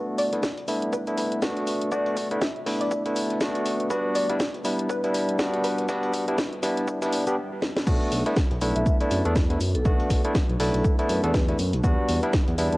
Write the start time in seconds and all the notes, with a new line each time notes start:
Already playing: A3 B3 D4 F#4 B4
0.18 D5, open hi-hat, shaker
0.33 A3 B3 D4 E4, snare, closed hi-hat
0.43 kick, snare, shaker
0.58 closed hi-hat
0.68 A3 B3 D4 E4, open hi-hat, shaker
0.82 closed hi-hat
0.93 B4, kick, shaker
1.07 A3 B3 D4 E4, closed hi-hat
1.17 B4, snare, open hi-hat, shaker
1.32 closed hi-hat
1.42 A3 B3 D4 F#4, kick, snare, shaker
1.57 snare, closed hi-hat
1.67 open hi-hat, shaker
1.82 closed hi-hat
1.92 A3 B3 D4 F#4 D5, kick, shaker
2.06 closed hi-hat
2.17 kick, open hi-hat, shaker
2.31 A3 B3 D4 E4, closed hi-hat
2.41 E5, kick, snare, shaker
2.56 closed hi-hat
2.66 A3 B3 D4 E4, open hi-hat
2.80 D5, closed hi-hat
2.91 kick, shaker
3.05 A3 B3 D4 E4, closed hi-hat
3.16 open hi-hat, shaker
3.30 snare, closed hi-hat
3.41 A3 B3 D4 F#4, kick, snare, shaker
3.55 closed hi-hat
3.65 snare, open hi-hat, shaker
3.80 closed hi-hat
3.90 G3 B3 D4 E4 F#4 B4, kick, shaker
4.15 D5, open hi-hat, shaker
4.29 G3 B3 D4 E4, snare, closed hi-hat
4.40 kick, snare, shaker
4.54 closed hi-hat
4.65 G3 B3 D4 E4, open hi-hat, shaker
4.79 closed hi-hat
4.89 B4, kick, shaker
5.04 G3 B3 D4 E4, closed hi-hat
5.14 snare, open hi-hat, shaker
5.29 closed hi-hat
5.39 G3 B3 D4 F#4, kick, snare, shaker
5.53 snare, closed hi-hat
5.64 B4, open hi-hat, shaker
5.78 snare, closed hi-hat
5.89 G3 B3 D4 F#4, kick, snare, shaker
6.03 closed hi-hat
6.13 kick, open hi-hat, shaker
6.28 G3 B3 D4 E4, closed hi-hat
6.38 kick, snare, shaker
6.53 closed hi-hat
6.63 G3 B3 D4 E4, snare, open hi-hat, shaker
6.77 snare, closed hi-hat
6.88 kick, shaker
7.02 G3 B3 D4 E4, snare, closed hi-hat, shaker
7.13 snare, open hi-hat
7.27 G3 B3 D4 G4, closed hi-hat, shaker
7.62 snare
7.77 snare
7.87 B1 A3 B3 D4 F#4 B4, kick, crash, shaker
8.12 B1, open hi-hat, shaker
8.26 A3 B3 D4 E4, snare, closed hi-hat
8.37 kick, snare, shaker
8.51 B1, closed hi-hat
8.61 B1 A3 B3 D4 E4, open hi-hat, shaker
8.76 B1 E5, closed hi-hat
8.86 kick, shaker
9.00 A3 B3 D4 E4 D5, closed hi-hat
9.11 F#2, snare, open hi-hat, shaker
9.25 E2 A3 B3 D4 A4, closed hi-hat
9.36 kick, snare, shaker
9.50 A3 B3 D4 E4, snare, closed hi-hat
9.60 F#2, open hi-hat, shaker
9.75 B1 A4, closed hi-hat
9.85 B1 A3 B3 D4 F#4, kick, shaker
10.00 closed hi-hat
10.10 B1, kick, snare, open hi-hat, shaker
10.24 A3 B3 D4 E4, closed hi-hat
10.35 kick, snare, shaker
10.49 B1, closed hi-hat
10.60 B1 A3 B3 D4 E4 A4, open hi-hat
10.74 B1 A4, closed hi-hat
10.84 kick, shaker
10.99 A3 B3 D4 E4, closed hi-hat
11.09 F#2 B4, open hi-hat, shaker
11.24 E2 A3 B3 D4 A4, snare, closed hi-hat
11.34 kick, snare, shaker
11.48 A3 B3 D4 E4, snare, closed hi-hat
11.59 F#2, open hi-hat, shaker
11.73 B1, closed hi-hat
11.84 E2 G3 B3 D4 E4 F#4, kick, shaker
12.08 E2, open hi-hat, shaker
12.23 G3 B3 D4 E4, snare, closed hi-hat
12.33 kick, snare, shaker
12.48 E2, closed hi-hat
12.58 E2 G3 B3 D4 E4, open hi-hat, shaker
12.72 E2 A5, closed hi-hat